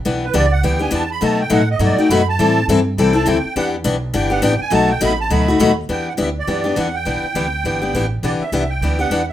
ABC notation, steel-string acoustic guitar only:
X:1
M:4/4
L:1/8
Q:"Swing" 1/4=206
K:Em
V:1 name="Steel-string acoustic guitar"
[E,B,DG] z [E,B,DG] z [E,B,DG] [B,DG] [E,B,DG] z | [B,,F,A,^DF] z [B,,F,A,DF] z [B,,F,A,DF] [A,DF] [B,,F,A,DF] z | [E,G,CEA] z [E,G,CEA] z [E,G,CEA] [CEA] [E,G,CEA] z | [E,B,DG] z [E,B,DG] z [E,B,DG] [B,DG] [E,B,DG] z |
[B,,F,A,^DF] z [B,,F,A,DF] z [B,,F,A,DF] [A,DF] [B,,F,A,DF] z | [E,B,DG] z [E,B,DG] z [E,B,DG] [B,DG] [E,B,DG] z | [E,B,DG] z [E,B,DG] z [E,B,DG] [B,DG] [E,B,DG] z | [E,B,DG] z [E,B,DG] z [E,B,DG] [B,DG] [E,B,DG] z |]